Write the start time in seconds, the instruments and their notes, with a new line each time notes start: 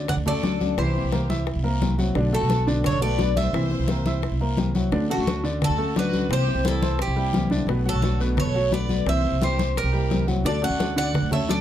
Already playing: upright bass D2, grand piano D3 D5
0.08 violin section D5, cuban tres F#5, muted nylon-string guitar stroke, high bongo, high conga, low conga, long guiro
0.16 upright bass D2
0.26 grand piano A3 A4 A5, nylon-string guitar A3 C#4 F#4, violin section A4, cuban tres D5, high bongo, high conga, low conga
0.43 nylon-string guitar D3 A3 C#4 F#4, grand piano D4 D5 D6, high bongo, low bongo, high conga, short guiro
0.60 nylon-string guitar A3 C#4 F#4, high conga, short guiro
0.77 upright bass C2, nylon-string guitar C3 E3 A#3 C4 E4, grand piano E3 E4 E5, violin section G4, cuban tres C5, high bongo, long guiro
0.95 nylon-string guitar A#3 C4 E4, high bongo, high conga
1.03 upright bass C2
1.12 nylon-string guitar C3 E3 A#3 C4 E4, grand piano A#3 A#4 A#5, high bongo, high conga, short guiro
1.29 grand piano E4 E5 E6, high bongo, high conga, short guiro
1.47 muted nylon-string guitar stroke, high bongo, high conga, long guiro
1.56 upright bass C2
1.63 grand piano A#3 A#4 A#5, nylon-string guitar A#3 C4 E4, high bongo, high conga
1.81 nylon-string guitar C3 E3 A#3 C4 E4, high bongo, low bongo, high conga, short guiro
1.98 grand piano F#3 F#4 F#5, nylon-string guitar A#3 C4 E4, high conga, short guiro
2.15 upright bass B1, nylon-string guitar B2 D3 A3 B3 F#4, grand piano D3 D4 D5, high bongo, high conga, long guiro
2.33 grand piano A3 A4 A5, nylon-string guitar A3 B3 F#4, violin section F#4, cuban tres A4, high bongo, high conga
2.41 upright bass B1
2.50 nylon-string guitar B2 D3 A3 B3 F#4, high bongo, high conga, short guiro
2.67 grand piano D3 D4 D5, high bongo, high conga, short guiro
2.84 violin section A4, cuban tres C#5, muted nylon-string guitar stroke, high bongo, high conga, low conga, long guiro
2.93 upright bass B1
3.01 grand piano A3 A4 A5, nylon-string guitar A3 B3 F#4, violin section B4, cuban tres D5, high bongo, high conga
3.19 nylon-string guitar B2 D3 A3 B3 F#4, grand piano D4 D5 D6, high bongo, low bongo, high conga, short guiro
3.36 nylon-string guitar A3 B3 F#4, violin section C5, cuban tres E5, high conga, short guiro
3.53 upright bass C2, nylon-string guitar C3 E3 A#3 C4 E4, grand piano E3 E4 E5, high bongo, high conga, long guiro
3.71 nylon-string guitar A#3 C4 E4, high bongo, high conga
3.79 upright bass C2
3.88 nylon-string guitar C3 E3 A#3 C4 E4, grand piano A#3 A#4 A#5, high bongo, high conga, short guiro
4.05 grand piano E4 E5 E6, high bongo, high conga, short guiro
4.22 muted nylon-string guitar stroke, high bongo, high conga, long guiro
4.31 upright bass C2
4.40 grand piano A#3 A#4 A#5, nylon-string guitar A#3 C4 E4, high bongo, high conga
4.57 nylon-string guitar C3 E3 A#3 C4 E4, high bongo, low bongo, high conga, short guiro
4.75 grand piano F#3 F#4 F#5, nylon-string guitar A#3 C4 E4, high conga, short guiro
4.92 upright bass D2, grand piano D3 D4 D5, nylon-string guitar D3 A3 C#4 F#4, high bongo, high conga, long guiro
5.10 grand piano A3 A4 A5, nylon-string guitar A3 C#4 F#4, violin section D4, cuban tres F#4, high bongo, high conga
5.18 upright bass D2
5.27 nylon-string guitar D3 A3 C#4 F#4, high bongo, high conga, short guiro
5.44 grand piano D3 D5, high bongo, high conga, short guiro
5.62 violin section F#4, cuban tres A4, muted nylon-string guitar stroke, high bongo, high conga, low conga
5.69 upright bass D2
5.78 grand piano A3 A4 A5, nylon-string guitar A3 C#4 F#4, high bongo, high conga
5.95 nylon-string guitar D3 A3 C#4 F#4, grand piano D4 D5 D6, violin section F#4, cuban tres B4, high bongo, low bongo, high conga, short guiro
6.12 nylon-string guitar A3 C#4 F#4, high conga, short guiro
6.29 upright bass C2, nylon-string guitar C3 E3 A#3 C4 E4, grand piano C3 C4 C5, violin section G4, cuban tres C5, high bongo, high conga, long guiro
6.47 nylon-string guitar A#3 C4 E4, high bongo, high conga
6.55 upright bass C2
6.64 nylon-string guitar C3 E3 A#3 C4 E4, grand piano G3 G4 G5, violin section E4, cuban tres A4, high bongo, high conga, short guiro
6.82 grand piano C4 C5 C6, high bongo, high conga, short guiro
6.99 violin section E4, cuban tres G4, muted nylon-string guitar stroke, high bongo, high conga, long guiro
7.07 upright bass C2
7.16 grand piano G3 G4 G5, nylon-string guitar A#3 C4 E4, high bongo, high conga
7.33 nylon-string guitar C3 E3 A#3 C4 E4, high bongo, low bongo, high conga, short guiro
7.50 grand piano D3 D4 D5, nylon-string guitar A#3 C4 E4, high conga, short guiro
7.67 upright bass B1, grand piano B2 B3 B4, nylon-string guitar B2 D3 A3 B3 F#4, high bongo, high conga, long guiro
7.85 grand piano F#3 F#4 F#5, nylon-string guitar A3 B3 F#4, violin section F#4, cuban tres A4, high bongo, high conga
7.93 upright bass B1
8.02 nylon-string guitar B2 D3 A3 B3 F#4, high bongo, high conga, short guiro
8.20 grand piano B2 B3 B4, high bongo, high conga, short guiro
8.37 violin section A4, cuban tres C#5, muted nylon-string guitar stroke, high bongo, high conga, low conga, long guiro
8.46 upright bass B1
8.55 grand piano F#3 F#4 F#5, nylon-string guitar A3 B3 F#4, high bongo, high conga
8.72 nylon-string guitar B2 D3 A3 B3 F#4, grand piano B3 B4 B5, violin section B4, cuban tres D5, high bongo, low bongo, high conga, short guiro
8.89 nylon-string guitar A3 B3 F#4, high conga, short guiro
9.06 upright bass C2, grand piano C3 C4 C5, nylon-string guitar C3 E3 A#3 C4 E4, violin section C5, cuban tres E5, high bongo, high conga, long guiro
9.24 nylon-string guitar A#3 C4 E4, high bongo, high conga
9.32 upright bass C2
9.41 nylon-string guitar C3 E3 A#3 C4 E4, grand piano G3 G4 G5, violin section G4, cuban tres C5, high bongo, high conga, short guiro
9.58 grand piano C4 C5 C6, high bongo, high conga, short guiro
9.76 violin section G4, cuban tres A#4, muted nylon-string guitar stroke, high bongo, high conga, long guiro
9.83 upright bass C2
9.93 grand piano G3 G4 G5, nylon-string guitar A#3 C4 E4, high bongo, high conga
10.10 nylon-string guitar C3 E3 A#3 C4 E4, high bongo, low bongo, high conga, short guiro
10.27 grand piano F#3 F#4 F#5, nylon-string guitar A#3 C4 E4, high conga, short guiro
10.44 upright bass D2, nylon-string guitar D3 A3 C#4 F#4, grand piano D3 D4 D5, violin section A4, cuban tres D5, high bongo, high conga, long guiro
10.62 grand piano A3 A4 A5, nylon-string guitar A3 C#4 F#4, violin section D5, cuban tres F#5, high bongo, high conga
10.70 upright bass D2
10.79 nylon-string guitar D3 A3 C#4 F#4, high bongo, high conga, short guiro
10.96 grand piano D3 D5, violin section D5, cuban tres F#5, high bongo, high conga, short guiro
11.14 muted nylon-string guitar stroke, high bongo, high conga, low conga, long guiro
11.23 upright bass D2
11.31 grand piano A3 A4 A5, nylon-string guitar A3 C#4 F#4, violin section C#5, cuban tres E5, high bongo, high conga, low conga
11.47 nylon-string guitar D3 A3 C#4 F#4, grand piano D4 D5 D6, violin section A4, cuban tres D5, high bongo, low bongo, high conga, short guiro